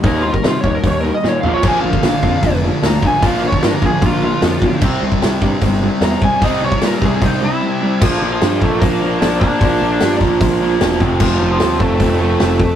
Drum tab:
CC |----------------|x---------------|----------------|x---------------|
HH |o---o---o-------|----o---o---o---|o---o---o---o---|----o---o---o---|
SD |----o-------o---|----o-------o---|----o-------o---|----o-------o---|
FT |--------------o-|----------------|----------------|----------------|
BD |o--o--o-o-------|o--o--o-o-----o-|o--o--o-o-----o-|o--o--o-o-----o-|

CC |----------------|x---------------|----------------|x---------------|
HH |o---o---o-------|----o---o---o---|o---o---o---o---|----o---o---o---|
SD |----o-----------|----o-------o---|----o-------o---|----o-------o---|
FT |----------------|----------------|----------------|----------------|
BD |o--o--o-o-------|o-----o-o-----o-|o-----o-o-----o-|o-----o-o-----o-|